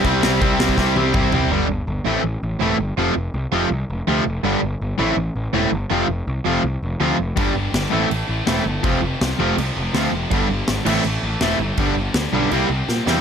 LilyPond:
<<
  \new Staff \with { instrumentName = "Overdriven electric guitar" } { \time 4/4 \key c \major \tempo 4 = 163 <c g c' e'>8 <c g c' e'>8 <c g c' e'>8 <c g c' e'>8 <c g c' e'>8 <c g c' e'>8 <c g c' e'>8 <c g c' e'>8 | \key f \lydian <g, d g b d'>8 r4 <a, e a c' e'>8 r4 <a, e a c' e'>8 r8 | <f a c' f'>8 r4 <f a c' f'>8 r4 <f a c' f'>8 r8 | <g, d g b d'>8 r4 <a, e a c' e'>8 r4 <a, e a c' e'>8 r8 |
<f a c' f'>8 r4 <f a c' f'>8 r4 <f a c' f'>8 r8 | <g, d g b d'>8 r4 <a, e a c' e'>8 r4 <a, e a c' e'>8 r8 | <f a c' f'>8 r4 <f a c' f'>8 r4 <f a c' f'>8 r8 | <g, d g b d'>8 r4 <a, e a c' e'>8 r4 <a, e a c' e'>8 r8 |
<g, d g b d'>8 r4 <g, d g b d'>8 <c g bes e'>8 r4 <c g bes e'>8 | }
  \new Staff \with { instrumentName = "Distorted electric guitar" } { \clef bass \time 4/4 \key c \major <c g c'>8 <c g c'>8 <c g c'>8 <c g c'>8 <c g c'>8 <c g c'>8 <c g c'>8 <c g c'>8 | \key f \lydian <g, d g>8 r4 <a, e a>8 r4 <a, e a>8 r8 | <f, c f>8 r4 <f, c f>8 r4 <f, c f>8 r8 | <g, d g>8 r4 <a, e a>8 r4 <a, e a>8 r8 |
<f, c f>8 r4 <f, c f>8 r4 <f, c f>8 r8 | <g, d g>8 r4 <a, e a>8 r4 <a, e a>8 r8 | <f, c f>8 r4 <f, c f>8 r4 <f, c f>8 r8 | <g, d g>8 r4 <a, e a>8 r4 <a, e a>8 r8 |
<g, d g>8 r4 <g, d g>8 <c g c'>8 r4 <c g c'>8 | }
  \new Staff \with { instrumentName = "Distorted electric guitar" } { \clef bass \time 4/4 \key c \major <c g c'>8 <c g c'>8 <c g c'>8 <c g c'>8 <c g c'>8 <c g c'>8 <c g c'>8 <c g c'>8 | \key f \lydian r1 | r1 | r1 |
r1 | <g, d g>8 <g, d g>8 <g, d g>8 <a, e a>8 <a, e a>8 <a, e a>8 <a, e a>8 <a, e a>8 | <f, c f>8 <f, c f>8 <f, c f>8 <f, c f>8 <f, c f>8 <f, c f>8 <f, c f>8 <f, c f>8 | <g, d g>8 <g, d g>8 <g, d g>8 <a, e a>8 <a, e a>8 <a, e a>8 <a, e a>8 <a, e a>8 |
<g, d g>8 <g, d g>8 <g, d g>8 <g, d g>8 <c g c'>8 <c g c'>8 <c g c'>8 <c g c'>8 | }
  \new Staff \with { instrumentName = "Picked electric bass" } { \clef bass \time 4/4 \key c \major c,8 c,8 c,8 c,8 c,8 c,8 c,8 c,8 | \key f \lydian g,,8 g,,8 g,,8 a,,8 a,,8 a,,8 e,,8 g,,8 | f,,8 f,,8 c,8 f,,8 c,8 f,,8 d,8 f,,8 | g,,8 g,,8 g,,8 a,,8 a,,8 a,,8 e,,8 g,,8 |
f,,8 f,,8 c,8 f,,8 c,8 f,,8 d,8 f,,8 | g,,8 g,,8 g,,8 a,,8 a,,8 a,,8 e,,8 g,,8 | f,,8 f,,8 c,8 f,,8 c,8 f,,8 d,8 f,,8 | g,,8 g,,8 aes,,8 a,,8 a,,8 a,,8 e,,8 g,,8 |
g,,8 g,,8 d,8 b,,8 c,8 c,8 bes,8 e,8 | }
  \new DrumStaff \with { instrumentName = "Drums" } \drummode { \time 4/4 <cymc bd>8 sn8 <cymc bd>8 sn16 bd16 <bd sn>8 tommh8 <bd toml>8 tomfh8 | r4 r4 r4 r4 | r4 r4 r4 r4 | r4 r4 r4 r4 |
r4 r4 r4 r4 | <cymc bd>4 <cymc sn>4 cymc4 <cymc sn>4 | <cymc bd>4 <cymc sn>4 cymc4 <cymc sn>4 | <cymc bd>4 <cymc sn>8 cymc8 cymc4 <cymc sn>4 |
<cymc bd>4 <cymc sn>4 cymc4 sn8 sn8 | }
>>